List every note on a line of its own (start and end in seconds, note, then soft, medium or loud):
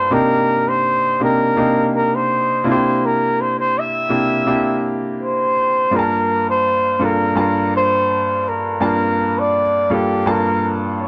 0.00 0.13 G2 medium
0.00 0.11 A#3 medium
0.00 0.11 D4 medium
0.00 0.14 F4 medium
0.00 0.14 A4 medium
0.00 0.15 C5 medium
0.00 0.13 A5 medium
0.10 0.91 C3 medium
0.10 0.91 A#3 medium
0.10 0.91 D4 medium
0.10 0.91 D#4 medium
0.10 0.91 G4 medium
0.10 0.70 A#4 medium
0.69 1.22 C5 medium
1.20 1.47 C3 medium
1.20 1.47 A#3 soft
1.20 1.47 D4 medium
1.20 1.47 D#4 soft
1.20 1.47 G4 medium
1.24 1.91 A#4 medium
1.57 2.62 C3 medium
1.57 2.63 A#3 medium
1.57 2.63 D4 medium
1.57 2.63 D#4 medium
1.57 2.63 G4 medium
1.96 2.17 A#4 medium
2.15 2.67 C5 medium
2.64 3.81 C3 medium
2.64 3.81 A#3 medium
2.64 3.81 D4 medium
2.64 3.81 E4 medium
2.64 2.72 F4 medium
2.70 3.85 G4 medium
2.70 3.07 C5 medium
3.06 3.43 A#4 medium
3.41 3.58 C5 medium
3.60 3.80 C5 medium
3.78 4.94 E5 loud
4.09 4.36 C3 medium
4.09 4.37 A#3 soft
4.09 4.37 D4 soft
4.09 4.37 E4 soft
4.09 4.37 G4 medium
4.46 5.53 C3 medium
4.46 5.53 A#3 medium
4.46 5.53 D4 medium
4.46 5.53 E4 medium
4.46 5.53 G4 medium
5.23 5.97 C5 medium
5.91 6.71 G2 medium
5.91 6.71 A#3 soft
5.91 6.72 D4 medium
5.91 6.72 F4 medium
5.91 5.98 G#4 soft
5.96 6.48 A#4 medium
5.96 6.75 A5 medium
6.50 7.06 C5 medium
6.99 7.27 G2 medium
6.99 7.27 A#3 soft
6.99 7.27 D4 medium
6.99 7.27 F4 soft
6.99 7.27 A4 medium
7.04 7.39 A#4 medium
7.35 8.42 G2 medium
7.35 8.43 A#3 medium
7.35 8.43 D4 medium
7.35 8.43 F4 medium
7.35 8.43 A5 medium
7.40 7.72 A#4 medium
7.76 8.50 C5 medium
8.48 8.83 A#4 medium
8.80 9.61 G2 medium
8.80 9.61 A#3 medium
8.80 9.61 D4 medium
8.80 9.61 F4 medium
8.80 9.62 A5 medium
8.85 9.41 A#4 medium
9.39 9.94 D5 medium
9.90 10.17 G2 medium
9.90 10.17 A#3 medium
9.90 10.17 D4 soft
9.90 10.17 F4 medium
9.90 10.30 G4 medium
9.90 10.18 A4 medium
10.26 11.08 G2 medium
10.26 11.08 A#3 medium
10.26 11.08 D4 medium
10.26 11.08 F4 medium
10.26 10.73 A#4 medium
10.26 11.08 A5 medium
11.02 11.08 D5 medium